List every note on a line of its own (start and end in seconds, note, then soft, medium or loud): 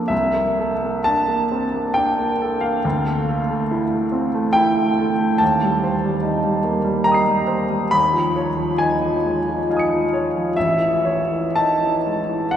0.00 0.14 A#3 soft
0.00 0.14 C4 soft
0.00 0.14 D4 soft
0.00 0.13 A4 soft
0.08 2.79 C2 soft
0.08 1.06 E5 medium
0.33 0.73 A#3 soft
0.59 0.98 A4 soft
0.83 1.21 A#3 soft
1.04 1.44 D4 soft
1.04 1.95 A5 medium
1.28 1.65 A#3 soft
1.51 1.87 C4 soft
1.74 2.10 A#3 soft
1.94 2.32 D4 soft
1.94 2.61 G5 medium
2.19 2.54 A#3 soft
2.42 2.76 A4 soft
2.61 2.84 A#3 soft
2.61 4.55 F5 medium
2.85 5.37 D2 medium
3.06 3.41 A3 soft
3.28 3.62 A4 soft
3.49 3.84 A3 soft
3.71 4.05 E4 soft
3.93 4.27 A3 soft
4.12 4.46 C4 soft
4.34 4.68 A3 soft
4.53 4.89 E4 soft
4.53 5.40 G5 medium
4.76 5.11 A3 soft
4.99 5.33 A4 soft
5.20 5.41 A3 soft
5.38 7.90 D#2 medium
5.38 7.07 A5 medium
5.62 5.95 G3 soft
5.84 6.16 C5 soft
6.04 6.37 G3 soft
6.22 6.57 D#4 soft
6.44 6.78 G3 soft
6.64 6.99 A#3 soft
6.85 7.20 G3 soft
7.04 7.42 D#4 soft
7.04 7.89 G5 soft
7.04 7.92 A#5 medium
7.12 7.92 D#6 soft
7.12 7.93 C7 soft
7.28 7.63 G3 soft
7.47 7.84 C5 soft
7.70 7.93 G3 soft
7.91 10.50 D#2 medium
7.91 8.79 B5 medium
8.13 8.49 F3 soft
8.36 8.72 C#5 soft
8.57 8.93 F3 soft
8.78 9.16 D#4 soft
8.78 9.67 G#5 medium
9.05 9.39 F3 soft
9.25 9.60 G#3 soft
9.49 9.83 F3 soft
9.71 10.04 D#4 soft
9.71 10.53 F5 soft
9.71 10.54 G#5 soft
9.77 10.56 D#6 soft
9.77 10.57 C#7 soft
9.92 10.26 F3 soft
10.13 10.47 C#5 soft
10.35 10.57 F3 soft
10.57 12.57 A1 medium
10.57 11.56 E5 medium
10.79 11.20 E3 soft
11.05 11.46 C#5 soft
11.32 11.71 E3 soft
11.56 11.96 D#4 soft
11.56 12.52 A5 medium
11.83 12.20 E3 soft
12.06 12.44 G#3 soft
12.28 12.57 E3 soft
12.51 12.57 F#5 medium